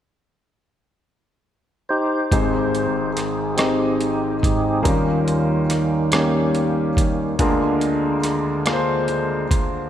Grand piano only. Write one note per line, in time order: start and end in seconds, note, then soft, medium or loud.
2.32 4.82 G#1 soft
2.32 4.82 G#2 medium
2.32 3.08 C4 medium
2.32 3.08 D#4 medium
2.32 3.08 G4 medium
2.32 3.08 G#4 medium
2.32 3.09 C5 medium
3.58 4.35 C4 soft
3.58 4.34 D#4 medium
3.58 4.35 G4 medium
3.58 4.35 G#4 soft
3.58 4.35 D#5 medium
4.83 7.35 D#2 soft
4.83 7.35 D#3 soft
4.83 5.61 A#3 medium
4.83 5.61 C#4 medium
4.83 5.61 D#4 soft
4.83 5.61 G4 medium
4.83 5.61 A#4 medium
6.13 6.89 A#3 medium
6.13 6.89 C#4 medium
6.13 6.90 D#4 soft
6.13 6.89 G4 medium
6.13 6.90 C#5 medium
7.39 9.90 D2 medium
7.39 9.90 D3 medium
7.39 8.16 A#3 medium
7.39 8.16 D4 medium
7.39 8.16 F4 medium
7.39 8.16 G#4 medium
7.39 8.16 A#4 medium
8.66 9.42 A#3 medium
8.66 9.42 D4 medium
8.66 9.43 F4 medium
8.66 9.43 G#4 medium
8.66 8.73 A#4 medium
8.73 9.46 C5 medium